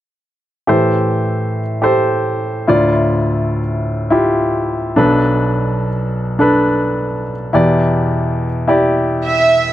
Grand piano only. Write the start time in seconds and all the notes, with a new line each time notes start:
0.67 A2 E3 G4 A4 C5
1.82 G4 A4 C5
2.67 D2 A2 E4 F4 D5
4.10 E4 F4 G4
4.96 B1 B2 D4 A4 B4
6.39 D4 A4 B4
7.53 E2 B2 E4 G4 D5
8.68 E4 G4 D5